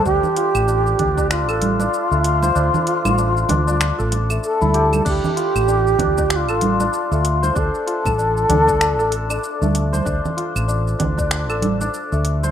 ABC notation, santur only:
X:1
M:4/4
L:1/16
Q:"Swing 16ths" 1/4=96
K:Dm
V:1 name="Santur"
D2 F2 D2 D D2 A2 D z A, z c | D2 F2 D2 D D2 A z A, z E G A | D2 F2 D2 D D2 A2 D z A, z c | D2 F2 D2 D D2 A2 D z A, z c |
D2 F2 D2 D D2 A2 D z A, z c |]